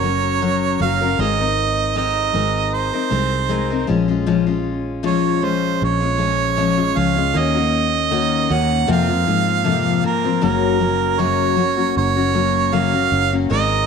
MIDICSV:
0, 0, Header, 1, 4, 480
1, 0, Start_track
1, 0, Tempo, 769231
1, 744, Time_signature, 4, 2, 24, 8
1, 8652, End_track
2, 0, Start_track
2, 0, Title_t, "Harmonica"
2, 0, Program_c, 0, 22
2, 0, Note_on_c, 0, 73, 88
2, 506, Note_off_c, 0, 73, 0
2, 510, Note_on_c, 0, 77, 96
2, 754, Note_on_c, 0, 75, 100
2, 764, Note_off_c, 0, 77, 0
2, 1230, Note_off_c, 0, 75, 0
2, 1234, Note_on_c, 0, 75, 95
2, 1710, Note_on_c, 0, 72, 78
2, 1720, Note_off_c, 0, 75, 0
2, 2429, Note_off_c, 0, 72, 0
2, 3159, Note_on_c, 0, 73, 76
2, 3397, Note_on_c, 0, 72, 81
2, 3407, Note_off_c, 0, 73, 0
2, 3632, Note_off_c, 0, 72, 0
2, 3647, Note_on_c, 0, 73, 89
2, 4357, Note_on_c, 0, 77, 93
2, 4366, Note_off_c, 0, 73, 0
2, 4605, Note_on_c, 0, 75, 104
2, 4614, Note_off_c, 0, 77, 0
2, 5324, Note_on_c, 0, 78, 102
2, 5333, Note_off_c, 0, 75, 0
2, 5555, Note_off_c, 0, 78, 0
2, 5566, Note_on_c, 0, 77, 93
2, 6251, Note_off_c, 0, 77, 0
2, 6277, Note_on_c, 0, 70, 74
2, 6495, Note_off_c, 0, 70, 0
2, 6512, Note_on_c, 0, 70, 87
2, 6991, Note_on_c, 0, 73, 86
2, 7000, Note_off_c, 0, 70, 0
2, 7468, Note_off_c, 0, 73, 0
2, 7473, Note_on_c, 0, 73, 88
2, 7955, Note_on_c, 0, 77, 107
2, 7965, Note_off_c, 0, 73, 0
2, 8324, Note_off_c, 0, 77, 0
2, 8430, Note_on_c, 0, 75, 104
2, 8652, Note_off_c, 0, 75, 0
2, 8652, End_track
3, 0, Start_track
3, 0, Title_t, "Steel-string acoustic guitar"
3, 0, Program_c, 1, 25
3, 16, Note_on_c, 1, 54, 50
3, 20, Note_on_c, 1, 61, 54
3, 23, Note_on_c, 1, 66, 58
3, 28, Note_on_c, 1, 70, 63
3, 252, Note_off_c, 1, 54, 0
3, 255, Note_off_c, 1, 66, 0
3, 256, Note_off_c, 1, 61, 0
3, 259, Note_off_c, 1, 70, 0
3, 259, Note_on_c, 1, 54, 73
3, 262, Note_on_c, 1, 66, 82
3, 263, Note_on_c, 1, 61, 75
3, 267, Note_on_c, 1, 70, 72
3, 488, Note_off_c, 1, 54, 0
3, 492, Note_off_c, 1, 61, 0
3, 495, Note_on_c, 1, 54, 61
3, 496, Note_off_c, 1, 66, 0
3, 500, Note_on_c, 1, 61, 57
3, 501, Note_off_c, 1, 70, 0
3, 504, Note_on_c, 1, 66, 65
3, 508, Note_on_c, 1, 70, 66
3, 623, Note_off_c, 1, 70, 0
3, 629, Note_off_c, 1, 66, 0
3, 630, Note_on_c, 1, 70, 52
3, 632, Note_off_c, 1, 54, 0
3, 634, Note_off_c, 1, 61, 0
3, 636, Note_on_c, 1, 66, 44
3, 643, Note_on_c, 1, 61, 41
3, 741, Note_off_c, 1, 61, 0
3, 741, Note_off_c, 1, 70, 0
3, 741, Note_on_c, 1, 56, 70
3, 744, Note_off_c, 1, 66, 0
3, 744, Note_on_c, 1, 60, 71
3, 746, Note_on_c, 1, 63, 76
3, 750, Note_on_c, 1, 70, 76
3, 866, Note_off_c, 1, 70, 0
3, 873, Note_off_c, 1, 63, 0
3, 874, Note_on_c, 1, 70, 49
3, 875, Note_off_c, 1, 56, 0
3, 876, Note_off_c, 1, 60, 0
3, 881, Note_on_c, 1, 63, 49
3, 885, Note_on_c, 1, 60, 38
3, 1215, Note_off_c, 1, 60, 0
3, 1217, Note_off_c, 1, 63, 0
3, 1220, Note_on_c, 1, 56, 67
3, 1221, Note_off_c, 1, 70, 0
3, 1223, Note_on_c, 1, 60, 76
3, 1225, Note_on_c, 1, 63, 77
3, 1229, Note_on_c, 1, 70, 86
3, 1446, Note_off_c, 1, 56, 0
3, 1454, Note_off_c, 1, 60, 0
3, 1454, Note_on_c, 1, 56, 64
3, 1456, Note_off_c, 1, 63, 0
3, 1461, Note_off_c, 1, 70, 0
3, 1462, Note_on_c, 1, 60, 58
3, 1464, Note_on_c, 1, 63, 56
3, 1468, Note_on_c, 1, 70, 67
3, 1823, Note_off_c, 1, 70, 0
3, 1830, Note_off_c, 1, 63, 0
3, 1830, Note_on_c, 1, 70, 51
3, 1832, Note_off_c, 1, 56, 0
3, 1834, Note_off_c, 1, 60, 0
3, 1838, Note_on_c, 1, 63, 46
3, 1842, Note_on_c, 1, 60, 41
3, 1933, Note_off_c, 1, 60, 0
3, 1935, Note_off_c, 1, 63, 0
3, 1936, Note_on_c, 1, 56, 53
3, 1939, Note_off_c, 1, 70, 0
3, 1940, Note_on_c, 1, 60, 60
3, 1943, Note_on_c, 1, 63, 56
3, 1947, Note_on_c, 1, 70, 64
3, 2170, Note_off_c, 1, 56, 0
3, 2173, Note_off_c, 1, 60, 0
3, 2177, Note_off_c, 1, 63, 0
3, 2177, Note_on_c, 1, 56, 73
3, 2179, Note_off_c, 1, 70, 0
3, 2180, Note_on_c, 1, 60, 68
3, 2185, Note_on_c, 1, 63, 69
3, 2187, Note_on_c, 1, 70, 70
3, 2302, Note_off_c, 1, 70, 0
3, 2309, Note_on_c, 1, 70, 54
3, 2311, Note_off_c, 1, 63, 0
3, 2314, Note_off_c, 1, 56, 0
3, 2315, Note_off_c, 1, 60, 0
3, 2319, Note_on_c, 1, 63, 45
3, 2322, Note_on_c, 1, 60, 42
3, 2416, Note_on_c, 1, 53, 65
3, 2417, Note_off_c, 1, 60, 0
3, 2419, Note_on_c, 1, 56, 69
3, 2421, Note_off_c, 1, 63, 0
3, 2422, Note_off_c, 1, 70, 0
3, 2423, Note_on_c, 1, 61, 66
3, 2425, Note_on_c, 1, 65, 70
3, 2539, Note_off_c, 1, 65, 0
3, 2545, Note_off_c, 1, 61, 0
3, 2546, Note_on_c, 1, 65, 58
3, 2553, Note_off_c, 1, 53, 0
3, 2553, Note_on_c, 1, 61, 56
3, 2555, Note_off_c, 1, 56, 0
3, 2561, Note_on_c, 1, 56, 44
3, 2658, Note_off_c, 1, 61, 0
3, 2659, Note_off_c, 1, 56, 0
3, 2660, Note_off_c, 1, 65, 0
3, 2661, Note_on_c, 1, 46, 81
3, 2662, Note_on_c, 1, 53, 83
3, 2666, Note_on_c, 1, 56, 79
3, 2666, Note_on_c, 1, 61, 83
3, 2668, Note_on_c, 1, 65, 95
3, 2779, Note_off_c, 1, 65, 0
3, 2786, Note_off_c, 1, 61, 0
3, 2786, Note_on_c, 1, 65, 58
3, 2791, Note_off_c, 1, 56, 0
3, 2793, Note_on_c, 1, 61, 51
3, 2796, Note_off_c, 1, 46, 0
3, 2796, Note_off_c, 1, 53, 0
3, 2798, Note_on_c, 1, 56, 41
3, 3135, Note_off_c, 1, 61, 0
3, 3136, Note_off_c, 1, 56, 0
3, 3138, Note_off_c, 1, 65, 0
3, 3138, Note_on_c, 1, 46, 70
3, 3141, Note_on_c, 1, 53, 77
3, 3143, Note_on_c, 1, 61, 77
3, 3144, Note_on_c, 1, 56, 74
3, 3145, Note_on_c, 1, 65, 85
3, 3368, Note_off_c, 1, 53, 0
3, 3374, Note_off_c, 1, 56, 0
3, 3375, Note_on_c, 1, 53, 59
3, 3377, Note_off_c, 1, 61, 0
3, 3380, Note_off_c, 1, 65, 0
3, 3382, Note_on_c, 1, 56, 64
3, 3383, Note_off_c, 1, 46, 0
3, 3384, Note_on_c, 1, 61, 64
3, 3388, Note_on_c, 1, 65, 63
3, 3739, Note_off_c, 1, 65, 0
3, 3747, Note_on_c, 1, 65, 55
3, 3748, Note_off_c, 1, 61, 0
3, 3753, Note_off_c, 1, 53, 0
3, 3755, Note_off_c, 1, 56, 0
3, 3755, Note_on_c, 1, 61, 47
3, 3762, Note_on_c, 1, 56, 45
3, 3853, Note_off_c, 1, 56, 0
3, 3856, Note_off_c, 1, 61, 0
3, 3857, Note_on_c, 1, 53, 62
3, 3860, Note_on_c, 1, 56, 60
3, 3861, Note_off_c, 1, 65, 0
3, 3864, Note_on_c, 1, 61, 58
3, 3867, Note_on_c, 1, 65, 64
3, 4094, Note_off_c, 1, 53, 0
3, 4097, Note_off_c, 1, 56, 0
3, 4098, Note_off_c, 1, 61, 0
3, 4098, Note_on_c, 1, 46, 66
3, 4100, Note_off_c, 1, 65, 0
3, 4101, Note_on_c, 1, 53, 70
3, 4105, Note_on_c, 1, 56, 73
3, 4105, Note_on_c, 1, 61, 83
3, 4108, Note_on_c, 1, 65, 80
3, 4220, Note_off_c, 1, 65, 0
3, 4224, Note_off_c, 1, 61, 0
3, 4227, Note_on_c, 1, 65, 50
3, 4231, Note_off_c, 1, 56, 0
3, 4231, Note_on_c, 1, 61, 44
3, 4235, Note_off_c, 1, 46, 0
3, 4236, Note_off_c, 1, 53, 0
3, 4239, Note_on_c, 1, 56, 41
3, 4336, Note_off_c, 1, 56, 0
3, 4338, Note_off_c, 1, 61, 0
3, 4339, Note_on_c, 1, 53, 57
3, 4341, Note_off_c, 1, 65, 0
3, 4343, Note_on_c, 1, 56, 59
3, 4346, Note_on_c, 1, 61, 60
3, 4350, Note_on_c, 1, 65, 70
3, 4460, Note_off_c, 1, 65, 0
3, 4467, Note_off_c, 1, 61, 0
3, 4467, Note_on_c, 1, 65, 54
3, 4472, Note_off_c, 1, 56, 0
3, 4475, Note_off_c, 1, 53, 0
3, 4475, Note_on_c, 1, 61, 49
3, 4480, Note_on_c, 1, 56, 46
3, 4574, Note_off_c, 1, 61, 0
3, 4576, Note_on_c, 1, 51, 65
3, 4578, Note_off_c, 1, 56, 0
3, 4580, Note_on_c, 1, 58, 76
3, 4581, Note_off_c, 1, 65, 0
3, 4582, Note_on_c, 1, 61, 80
3, 4587, Note_on_c, 1, 66, 84
3, 4705, Note_off_c, 1, 66, 0
3, 4713, Note_on_c, 1, 66, 52
3, 4714, Note_off_c, 1, 51, 0
3, 4714, Note_off_c, 1, 61, 0
3, 4716, Note_off_c, 1, 58, 0
3, 4722, Note_on_c, 1, 61, 42
3, 4725, Note_on_c, 1, 58, 39
3, 5054, Note_off_c, 1, 58, 0
3, 5055, Note_off_c, 1, 61, 0
3, 5059, Note_on_c, 1, 51, 71
3, 5060, Note_off_c, 1, 66, 0
3, 5062, Note_on_c, 1, 58, 80
3, 5063, Note_on_c, 1, 61, 79
3, 5067, Note_on_c, 1, 66, 88
3, 5291, Note_off_c, 1, 51, 0
3, 5297, Note_off_c, 1, 58, 0
3, 5298, Note_off_c, 1, 61, 0
3, 5298, Note_on_c, 1, 51, 60
3, 5302, Note_off_c, 1, 66, 0
3, 5304, Note_on_c, 1, 58, 62
3, 5305, Note_on_c, 1, 61, 64
3, 5310, Note_on_c, 1, 66, 60
3, 5533, Note_off_c, 1, 58, 0
3, 5534, Note_on_c, 1, 41, 65
3, 5538, Note_off_c, 1, 51, 0
3, 5538, Note_on_c, 1, 48, 76
3, 5540, Note_on_c, 1, 53, 73
3, 5541, Note_off_c, 1, 61, 0
3, 5541, Note_off_c, 1, 66, 0
3, 5541, Note_on_c, 1, 58, 77
3, 5543, Note_on_c, 1, 65, 83
3, 5544, Note_on_c, 1, 60, 82
3, 5660, Note_off_c, 1, 65, 0
3, 5667, Note_off_c, 1, 60, 0
3, 5668, Note_on_c, 1, 65, 56
3, 5671, Note_off_c, 1, 58, 0
3, 5673, Note_off_c, 1, 41, 0
3, 5673, Note_off_c, 1, 53, 0
3, 5674, Note_off_c, 1, 48, 0
3, 5674, Note_on_c, 1, 60, 50
3, 5679, Note_on_c, 1, 58, 42
3, 5680, Note_on_c, 1, 53, 44
3, 5770, Note_off_c, 1, 53, 0
3, 5773, Note_off_c, 1, 58, 0
3, 5777, Note_on_c, 1, 53, 53
3, 5780, Note_off_c, 1, 60, 0
3, 5780, Note_on_c, 1, 58, 59
3, 5781, Note_off_c, 1, 65, 0
3, 5788, Note_on_c, 1, 60, 62
3, 5789, Note_on_c, 1, 65, 57
3, 6013, Note_off_c, 1, 53, 0
3, 6014, Note_off_c, 1, 58, 0
3, 6016, Note_off_c, 1, 60, 0
3, 6016, Note_on_c, 1, 41, 72
3, 6018, Note_off_c, 1, 65, 0
3, 6018, Note_on_c, 1, 48, 72
3, 6021, Note_on_c, 1, 53, 74
3, 6021, Note_on_c, 1, 58, 78
3, 6023, Note_on_c, 1, 60, 81
3, 6026, Note_on_c, 1, 65, 85
3, 6249, Note_off_c, 1, 53, 0
3, 6255, Note_off_c, 1, 58, 0
3, 6256, Note_on_c, 1, 53, 63
3, 6261, Note_off_c, 1, 41, 0
3, 6261, Note_off_c, 1, 60, 0
3, 6262, Note_off_c, 1, 48, 0
3, 6263, Note_on_c, 1, 58, 69
3, 6266, Note_off_c, 1, 65, 0
3, 6268, Note_on_c, 1, 60, 74
3, 6273, Note_on_c, 1, 65, 77
3, 6383, Note_off_c, 1, 65, 0
3, 6389, Note_off_c, 1, 58, 0
3, 6389, Note_off_c, 1, 60, 0
3, 6390, Note_on_c, 1, 65, 55
3, 6393, Note_off_c, 1, 53, 0
3, 6396, Note_on_c, 1, 60, 55
3, 6397, Note_on_c, 1, 58, 49
3, 6401, Note_on_c, 1, 53, 49
3, 6497, Note_off_c, 1, 58, 0
3, 6498, Note_on_c, 1, 42, 71
3, 6499, Note_off_c, 1, 53, 0
3, 6500, Note_on_c, 1, 49, 76
3, 6502, Note_off_c, 1, 65, 0
3, 6502, Note_on_c, 1, 54, 76
3, 6503, Note_off_c, 1, 60, 0
3, 6504, Note_on_c, 1, 58, 81
3, 6505, Note_on_c, 1, 61, 76
3, 6506, Note_on_c, 1, 66, 85
3, 6726, Note_off_c, 1, 54, 0
3, 6733, Note_off_c, 1, 58, 0
3, 6733, Note_off_c, 1, 61, 0
3, 6734, Note_on_c, 1, 54, 50
3, 6738, Note_off_c, 1, 66, 0
3, 6740, Note_on_c, 1, 58, 56
3, 6741, Note_on_c, 1, 61, 54
3, 6742, Note_off_c, 1, 42, 0
3, 6743, Note_off_c, 1, 49, 0
3, 6745, Note_on_c, 1, 66, 61
3, 6975, Note_off_c, 1, 54, 0
3, 6979, Note_off_c, 1, 58, 0
3, 6980, Note_off_c, 1, 61, 0
3, 6980, Note_on_c, 1, 49, 68
3, 6981, Note_off_c, 1, 66, 0
3, 6982, Note_on_c, 1, 42, 69
3, 6983, Note_on_c, 1, 54, 72
3, 6987, Note_on_c, 1, 58, 75
3, 6988, Note_on_c, 1, 61, 77
3, 6989, Note_on_c, 1, 66, 80
3, 7207, Note_off_c, 1, 54, 0
3, 7212, Note_off_c, 1, 58, 0
3, 7214, Note_on_c, 1, 54, 56
3, 7216, Note_off_c, 1, 61, 0
3, 7219, Note_off_c, 1, 66, 0
3, 7219, Note_on_c, 1, 58, 60
3, 7223, Note_off_c, 1, 42, 0
3, 7223, Note_off_c, 1, 49, 0
3, 7224, Note_on_c, 1, 61, 61
3, 7227, Note_on_c, 1, 66, 68
3, 7336, Note_off_c, 1, 66, 0
3, 7338, Note_off_c, 1, 61, 0
3, 7343, Note_off_c, 1, 58, 0
3, 7343, Note_on_c, 1, 66, 54
3, 7346, Note_off_c, 1, 54, 0
3, 7346, Note_on_c, 1, 61, 45
3, 7351, Note_on_c, 1, 58, 47
3, 7354, Note_on_c, 1, 54, 43
3, 7583, Note_off_c, 1, 66, 0
3, 7585, Note_off_c, 1, 61, 0
3, 7590, Note_on_c, 1, 66, 50
3, 7592, Note_on_c, 1, 61, 48
3, 7593, Note_off_c, 1, 58, 0
3, 7595, Note_off_c, 1, 54, 0
3, 7600, Note_on_c, 1, 58, 44
3, 7603, Note_on_c, 1, 54, 39
3, 7689, Note_off_c, 1, 54, 0
3, 7692, Note_off_c, 1, 58, 0
3, 7697, Note_on_c, 1, 54, 56
3, 7698, Note_off_c, 1, 61, 0
3, 7700, Note_on_c, 1, 58, 63
3, 7701, Note_off_c, 1, 66, 0
3, 7705, Note_on_c, 1, 61, 61
3, 7709, Note_on_c, 1, 66, 58
3, 7936, Note_off_c, 1, 54, 0
3, 7937, Note_off_c, 1, 58, 0
3, 7938, Note_off_c, 1, 61, 0
3, 7938, Note_on_c, 1, 42, 70
3, 7940, Note_off_c, 1, 66, 0
3, 7941, Note_on_c, 1, 49, 78
3, 7944, Note_on_c, 1, 54, 73
3, 7944, Note_on_c, 1, 58, 79
3, 7945, Note_on_c, 1, 61, 71
3, 7948, Note_on_c, 1, 66, 82
3, 8063, Note_off_c, 1, 66, 0
3, 8067, Note_off_c, 1, 61, 0
3, 8069, Note_off_c, 1, 58, 0
3, 8070, Note_on_c, 1, 66, 54
3, 8072, Note_off_c, 1, 54, 0
3, 8073, Note_off_c, 1, 42, 0
3, 8074, Note_off_c, 1, 49, 0
3, 8074, Note_on_c, 1, 61, 50
3, 8077, Note_on_c, 1, 58, 45
3, 8079, Note_on_c, 1, 54, 45
3, 8306, Note_off_c, 1, 66, 0
3, 8309, Note_off_c, 1, 61, 0
3, 8314, Note_off_c, 1, 58, 0
3, 8314, Note_on_c, 1, 66, 54
3, 8316, Note_on_c, 1, 61, 47
3, 8317, Note_off_c, 1, 54, 0
3, 8322, Note_on_c, 1, 58, 44
3, 8325, Note_on_c, 1, 54, 42
3, 8420, Note_off_c, 1, 54, 0
3, 8422, Note_off_c, 1, 58, 0
3, 8422, Note_off_c, 1, 66, 0
3, 8422, Note_on_c, 1, 56, 73
3, 8424, Note_off_c, 1, 61, 0
3, 8425, Note_on_c, 1, 60, 80
3, 8427, Note_on_c, 1, 63, 78
3, 8430, Note_on_c, 1, 70, 87
3, 8652, Note_off_c, 1, 56, 0
3, 8652, Note_off_c, 1, 60, 0
3, 8652, Note_off_c, 1, 63, 0
3, 8652, Note_off_c, 1, 70, 0
3, 8652, End_track
4, 0, Start_track
4, 0, Title_t, "Fingered electric bass"
4, 0, Program_c, 2, 33
4, 0, Note_on_c, 2, 30, 90
4, 477, Note_off_c, 2, 30, 0
4, 501, Note_on_c, 2, 30, 82
4, 724, Note_off_c, 2, 30, 0
4, 740, Note_on_c, 2, 32, 100
4, 1438, Note_off_c, 2, 32, 0
4, 1463, Note_on_c, 2, 32, 85
4, 1812, Note_off_c, 2, 32, 0
4, 1944, Note_on_c, 2, 36, 83
4, 2401, Note_off_c, 2, 36, 0
4, 2430, Note_on_c, 2, 34, 87
4, 3604, Note_off_c, 2, 34, 0
4, 3631, Note_on_c, 2, 34, 92
4, 4324, Note_off_c, 2, 34, 0
4, 4349, Note_on_c, 2, 37, 84
4, 4569, Note_off_c, 2, 37, 0
4, 4588, Note_on_c, 2, 39, 96
4, 5282, Note_off_c, 2, 39, 0
4, 5306, Note_on_c, 2, 39, 89
4, 5527, Note_off_c, 2, 39, 0
4, 5548, Note_on_c, 2, 41, 87
4, 5768, Note_off_c, 2, 41, 0
4, 5790, Note_on_c, 2, 44, 80
4, 6483, Note_off_c, 2, 44, 0
4, 6512, Note_on_c, 2, 30, 89
4, 7443, Note_off_c, 2, 30, 0
4, 7468, Note_on_c, 2, 30, 99
4, 8160, Note_off_c, 2, 30, 0
4, 8185, Note_on_c, 2, 30, 83
4, 8404, Note_off_c, 2, 30, 0
4, 8427, Note_on_c, 2, 32, 100
4, 8652, Note_off_c, 2, 32, 0
4, 8652, End_track
0, 0, End_of_file